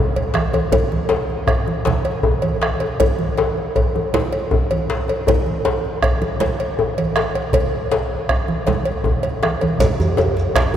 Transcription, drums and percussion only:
0.16 cowbell, low conga
0.34 bombo rim, djembe slap, high conga
0.53 bombo rim, cowbell, djembe tone, high conga
0.72 bombo rim, bombo low, cowbell, djembe bass, low conga
0.91 djembe slap, high conga
1.09 cowbell, djembe slap, djembe tone, high conga
1.28 djembe slap, high conga
1.47 bombo rim, bombo low, cowbell, djembe slap, djembe bass
1.66 djembe tone, high conga
1.85 cowbell, djembe slap, high conga, low conga
2.05 bombo rim, cowbell
2.23 bombo low, djembe slap, djembe tone, djembe bass
2.42 cowbell, high conga
2.62 bombo rim, djembe slap
2.80 cowbell, djembe tone
3.00 bombo rim, bombo low, cowbell, djembe bass, low conga
3.18 djembe slap, high conga
3.38 cowbell, djembe slap, high conga, djembe tone
3.57 djembe slap, high conga
3.76 bombo low, cowbell, djembe slap, djembe bass
3.95 djembe tone, high conga
4.14 cowbell, djembe slap, high conga, low conga
4.33 cowbell
4.51 bombo low, djembe slap, djembe tone, djembe bass
4.71 cowbell, high conga
4.90 djembe slap
5.08 cowbell, djembe tone
5.27 bombo rim, bombo low, cowbell, djembe bass, low conga
5.46 djembe slap, high conga
5.65 cowbell, djembe slap, djembe tone, high conga
5.85 djembe slap, high conga
6.02 bombo rim, bombo low, cowbell, djembe slap, djembe bass
6.22 high conga, djembe tone
6.40 cowbell, djembe slap, high conga, low conga
6.59 bombo rim, cowbell
6.79 djembe slap, djembe tone, djembe bass
6.98 cowbell, high conga
7.16 bombo rim, djembe slap
7.35 cowbell, djembe tone
7.53 bombo low, cowbell, high conga, djembe bass, low conga
7.72 djembe slap
7.92 cowbell, djembe slap, djembe tone
8.11 bombo rim
8.29 bombo rim, bombo low, cowbell, djembe slap
8.48 bombo rim, high conga
8.67 bombo rim, cowbell, djembe slap, low conga
8.85 cowbell, djembe slap
9.04 bombo low, djembe slap, djembe tone, djembe bass, low conga
9.23 bombo rim, cowbell, djembe slap, low conga
9.43 bombo rim, djembe slap, high conga
9.61 bombo rim, cowbell, djembe slap, djembe tone, high conga
9.79 bombo rim, bombo low, cowbell, djembe slap, djembe bass, low conga, shekere
9.99 djembe slap, high conga, djembe bass, shekere
10.17 cowbell, djembe slap, djembe tone, high conga, djembe bass, shekere
10.36 djembe slap, djembe tone, high conga, shekere
10.55 bombo rim, bombo low, cowbell, djembe slap, djembe bass
10.56 djembe slap

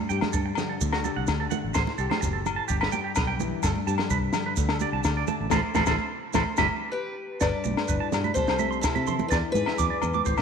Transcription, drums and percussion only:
0.10 maracas
0.21 snare, high conga, low conga, low agogo
0.33 kick, maracas
0.55 snare, low conga, low agogo, maracas
0.81 kick, maracas
0.93 snare, low agogo
1.04 high conga, maracas
1.27 kick, snare, low agogo, maracas
1.51 high conga, low conga, maracas
1.74 kick, snare, low agogo, maracas
1.87 snare, high conga
1.98 maracas
2.11 snare, high conga, low conga, low agogo
2.22 kick, snare, maracas
2.46 low conga, low agogo, maracas
2.68 kick, maracas
2.81 snare, low agogo
2.92 high conga, maracas
3.15 kick, snare, low agogo, maracas
3.40 high conga, low conga, maracas
3.63 kick, snare, low agogo, maracas
3.76 high conga
3.88 maracas
3.98 snare, low conga, low agogo
4.10 kick, maracas
4.33 snare, low conga, low agogo, maracas
4.56 kick, snare, maracas
4.69 snare, low agogo
4.80 high conga, maracas
5.04 kick, snare, low agogo, maracas
5.27 high conga, low conga, maracas
5.51 kick, snare, high conga, low agogo, maracas
5.75 kick, snare, high conga, low agogo, maracas
5.86 kick, snare, high conga, low agogo, maracas
6.33 kick, snare, high conga, low agogo, maracas
6.57 kick, snare, high conga, low agogo, maracas
7.41 kick, snare, low agogo, maracas
7.64 high conga, maracas
7.77 snare, low agogo
7.88 kick, maracas
8.12 snare, low conga, low agogo, maracas
8.24 high conga, maracas
8.35 kick, maracas
8.47 snare, low agogo, maracas
8.59 high conga, maracas
8.72 maracas
8.83 kick, snare, low agogo, maracas
8.96 high conga, maracas
9.07 low conga, maracas
9.19 high conga, maracas
9.31 kick, snare, low agogo, maracas
9.55 high conga, maracas
9.66 snare, low agogo
9.78 kick, snare, maracas
10.02 low conga, low agogo, maracas
10.14 high conga, maracas
10.25 kick, maracas
10.37 snare, low agogo, maracas

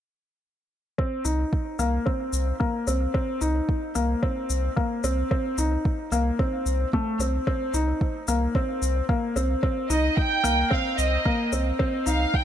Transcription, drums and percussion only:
0.99 kick
1.25 shaker
1.53 kick
1.79 shaker
2.07 kick
2.33 shaker
2.61 kick
2.87 shaker
3.15 kick
3.41 shaker
3.69 kick
3.95 shaker
4.23 kick
4.50 shaker
4.77 kick
5.04 shaker
5.31 kick
5.58 shaker
5.85 kick
6.12 shaker
6.39 kick
6.66 shaker
6.93 kick
7.20 shaker
7.47 kick
7.74 shaker
8.01 kick
8.28 shaker
8.55 kick
8.82 shaker
9.09 kick
9.37 shaker
9.63 kick
9.90 shaker
10.17 kick
10.45 shaker
10.71 kick
10.98 shaker
11.26 kick
11.53 shaker
11.80 kick
12.06 shaker
12.34 kick

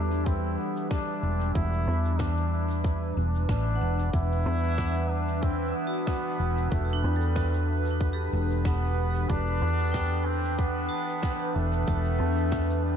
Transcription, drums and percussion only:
0.11 cabasa
0.26 kick, cabasa
0.77 cabasa
0.91 kick, cross-stick, cabasa
1.41 cabasa
1.55 kick, cabasa
1.73 cabasa
2.05 cabasa
2.19 kick, cross-stick, cabasa
2.37 cabasa
2.70 cabasa
2.84 kick, cabasa
3.35 cabasa
3.49 kick, cross-stick, cabasa
3.99 cabasa
4.13 kick, cabasa
4.32 cabasa
4.64 cabasa
4.78 kick, cross-stick, cabasa
4.95 cabasa
5.28 cabasa
5.42 kick, cabasa
5.93 cabasa
6.07 kick, cross-stick, cabasa
6.57 cabasa
6.71 kick, cabasa
6.89 cabasa
7.21 cabasa
7.36 kick, cross-stick, cabasa
7.53 cabasa
7.85 cabasa
8.01 kick, cabasa
8.51 cabasa
8.65 kick, cross-stick, cabasa
9.16 cabasa
9.30 kick, cabasa
9.47 cabasa
9.80 cabasa
9.93 kick, cross-stick, cabasa
10.12 cabasa
10.45 cabasa
10.58 kick, cabasa
11.09 cabasa
11.23 kick, cross-stick, cabasa
11.73 cabasa
11.88 kick, cabasa
12.05 cabasa
12.37 cabasa
12.52 kick, cross-stick, cabasa
12.70 cabasa

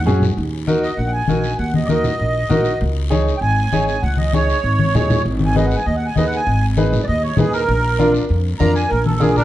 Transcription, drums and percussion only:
0.07 low conga, short guiro
0.22 low conga, short guiro
0.38 long guiro
0.68 high conga, short guiro
0.83 short guiro
0.99 long guiro
1.28 high conga, short guiro
1.44 short guiro
1.59 long guiro
1.74 high conga
1.89 high conga, short guiro
2.04 low conga, short guiro
2.20 long guiro
2.50 high conga, low conga, short guiro
2.64 short guiro
2.81 long guiro
3.12 high conga, short guiro
3.28 short guiro
3.42 long guiro
3.72 high conga, short guiro
3.88 short guiro
4.04 long guiro
4.17 high conga
4.33 high conga, short guiro
4.50 short guiro
4.64 long guiro
4.79 high conga
4.95 low conga, short guiro
5.10 low conga, short guiro
5.26 long guiro
5.40 high conga
5.56 high conga, short guiro
5.71 short guiro
5.86 long guiro
6.16 high conga, short guiro
6.32 short guiro
6.47 long guiro
6.77 high conga, short guiro
6.92 low conga, short guiro
7.08 long guiro
7.37 high conga, low conga, short guiro
7.53 short guiro
7.69 long guiro
8.00 high conga, short guiro
8.14 short guiro
8.29 long guiro
8.60 high conga, short guiro
8.76 short guiro
8.91 long guiro
9.06 high conga
9.21 high conga, short guiro
9.36 low conga, short guiro

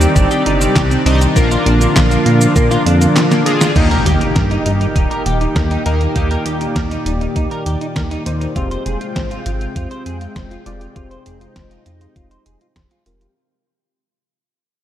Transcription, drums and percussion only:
0.01 closed hi-hat, cabasa
0.16 kick, closed hi-hat, cabasa
0.31 closed hi-hat, cabasa
0.46 closed hi-hat
0.61 closed hi-hat, cabasa
0.76 kick, snare, clap, closed hi-hat, cabasa
0.91 closed hi-hat, cabasa
1.06 closed hi-hat
1.21 closed hi-hat, cabasa
1.36 kick, closed hi-hat, cabasa
1.51 closed hi-hat, cabasa
1.66 closed hi-hat
1.81 closed hi-hat, cabasa
1.96 kick, snare, clap, closed hi-hat, cabasa
2.11 closed hi-hat, cabasa
2.26 closed hi-hat
2.41 closed hi-hat, cabasa
2.56 kick, closed hi-hat, cabasa
2.71 snare, closed hi-hat, cabasa
2.87 closed hi-hat
3.02 closed hi-hat, cabasa
3.16 snare, clap, closed hi-hat, cabasa
3.32 snare, closed hi-hat, cabasa
3.46 closed hi-hat
3.61 snare, closed hi-hat, cabasa
3.76 kick, closed hi-hat, crash
3.91 closed hi-hat
4.06 closed hi-hat
4.21 closed hi-hat
4.36 kick, snare, closed hi-hat
4.51 closed hi-hat
4.66 closed hi-hat
4.81 closed hi-hat
4.96 kick, closed hi-hat
5.11 closed hi-hat
5.26 closed hi-hat
5.41 closed hi-hat
5.56 kick, snare, closed hi-hat
5.71 closed hi-hat
5.86 closed hi-hat
6.01 closed hi-hat
6.16 kick, closed hi-hat
6.31 closed hi-hat
6.46 closed hi-hat
6.61 closed hi-hat
6.76 kick, snare, closed hi-hat
6.91 closed hi-hat
7.06 closed hi-hat
7.21 closed hi-hat
7.36 kick, closed hi-hat
7.51 closed hi-hat
7.66 closed hi-hat
7.81 closed hi-hat
7.96 kick, snare, closed hi-hat
8.11 closed hi-hat
8.26 closed hi-hat
8.41 closed hi-hat
8.56 kick, closed hi-hat
8.71 closed hi-hat
8.86 closed hi-hat
9.01 closed hi-hat
9.16 kick, snare, closed hi-hat
9.31 closed hi-hat
9.46 closed hi-hat
9.61 closed hi-hat
9.76 kick, closed hi-hat
9.91 closed hi-hat
10.06 closed hi-hat
10.21 closed hi-hat
10.36 kick, snare, closed hi-hat
10.51 closed hi-hat
10.66 closed hi-hat
10.81 closed hi-hat
10.96 kick, closed hi-hat
11.11 closed hi-hat
11.26 closed hi-hat
11.41 closed hi-hat
11.56 kick, snare, closed hi-hat
11.71 closed hi-hat
11.86 closed hi-hat
12.01 closed hi-hat
12.16 kick, closed hi-hat
12.31 closed hi-hat
12.46 closed hi-hat
12.61 closed hi-hat
12.76 kick, snare, closed hi-hat
12.91 closed hi-hat
13.06 closed hi-hat
13.21 closed hi-hat

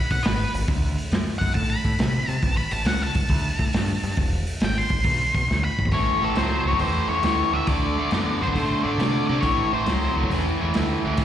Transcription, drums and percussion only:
0.10 kick, open hi-hat
0.24 snare, open hi-hat
0.55 open hi-hat
0.68 kick, open hi-hat
0.98 open hi-hat
1.12 snare, open hi-hat
1.28 snare
1.41 kick, open hi-hat
1.54 kick, open hi-hat
1.85 kick, open hi-hat
1.99 snare, open hi-hat
2.28 open hi-hat
2.42 kick, open hi-hat
2.71 open hi-hat
2.85 snare, open hi-hat
3.02 snare
3.15 kick, open hi-hat
3.29 kick, open hi-hat
3.59 kick, open hi-hat
3.73 snare, open hi-hat
4.03 open hi-hat
4.17 kick, open hi-hat
4.47 open hi-hat
4.60 snare, open hi-hat
4.76 snare
4.89 kick, open hi-hat
5.04 kick, open hi-hat
5.35 kick, open hi-hat
5.51 snare
5.79 kick
5.85 floor tom
5.91 kick, open hi-hat
6.36 snare, open hi-hat
6.73 kick
6.79 kick, open hi-hat
7.23 snare, open hi-hat
7.67 kick, open hi-hat
8.11 snare, open hi-hat
8.42 snare
8.48 kick
8.55 kick, open hi-hat
9.00 snare, open hi-hat
9.43 kick, open hi-hat
9.86 snare, open hi-hat
10.23 kick
10.30 kick, open hi-hat
10.74 snare, open hi-hat
11.17 kick, open hi-hat

